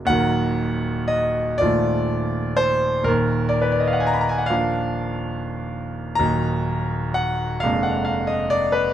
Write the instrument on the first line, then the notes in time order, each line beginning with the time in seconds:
grand piano
Already playing: F#3 A#3 A#4
0.05 D#2 F#5
0.09 D#1 F#3 A#3 A#4
1.08 D#5
1.58 D#1 D#2 F3 A3 D5
1.62 F4
2.57 C5
3.03 D#1 A#4
3.08 D#2
3.49 D5
3.62 B4
3.72 D5
3.80 D#5
3.87 F5
3.93 F#5
4.00 G#5
4.07 A#5
4.13 B5
4.21 A#5
4.29 G#5
4.38 F#5
4.46 A#3 F5
4.50 F3 D4
6.15 D#1 D#2 F#3 A#5
6.19 A#3 D#4
7.14 F#5
7.60 F1 F2 G#3 F5
7.64 A#3 D4
7.83 F#5
8.05 F5
8.27 D#5
8.50 D5
8.72 B4